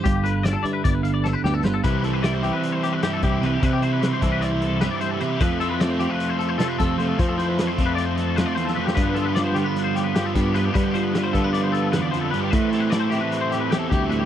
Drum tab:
HH |x-x-x-x-x-x-------|x-x-x-x-x-x-x-x-x-|x-x-x-x-x-x-x-x-x-|x-x-x-x-x-x-x-x-x-|
SD |----o-------o-o-o-|----o-----o-o-----|----o-o-----o-o---|----o-------o-o---|
BD |o-------o---------|o-------------o---|o-----o-----------|o-------------o---|

HH |x-x-x-x-x-x-x-x---|x-x-x-x-x-x-x-x-x-|x-x-x-x-x-x-x-x-x-|x-x-x-x-x-x-x-x-x-|
SD |----o-o---o-o--o-o|----o-o---o-o-o---|----o-------o-----|----o-o-o-o-o-----|
BD |o-----o-----------|o-------------o---|o-----o-----------|o-------------o---|